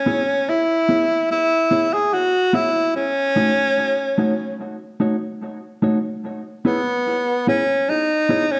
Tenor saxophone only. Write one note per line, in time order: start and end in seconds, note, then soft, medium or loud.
0.00 0.51 C#4 loud
0.49 1.31 E4 loud
1.31 1.95 E4 loud
1.93 2.15 G#4 medium
2.14 2.56 F#4 loud
2.55 2.96 E4 medium
2.96 4.56 C#4 loud
6.66 7.44 B3 medium
7.49 7.91 C#4 medium
7.89 8.53 D#4 medium
8.52 8.60 C#4 medium